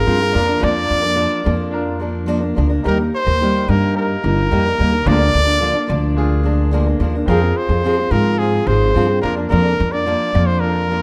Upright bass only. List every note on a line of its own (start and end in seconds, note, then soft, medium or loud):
0.07 0.30 G2 medium
0.35 0.58 F2 medium
0.63 0.86 F2 loud
0.90 1.25 F2 medium
1.46 2.53 F2 loud
2.58 2.80 D2 loud
2.85 3.08 D#2 loud
3.27 3.61 D#2 loud
3.68 4.14 G2 loud
4.24 4.47 G1 loud
4.52 4.74 F2 medium
4.79 5.02 D#2 loud
5.06 5.29 D2 loud
5.35 5.69 D2 loud
5.90 6.97 D2 loud
7.00 7.23 D#2 loud
7.28 7.51 F2 loud
7.69 8.04 F2 medium
8.11 8.57 G#2 loud
8.67 8.90 G#1 loud
8.96 9.18 G2 medium
9.24 9.46 F2 medium
9.52 9.74 F2 loud
9.80 10.14 F2 loud
10.35 11.02 F2 loud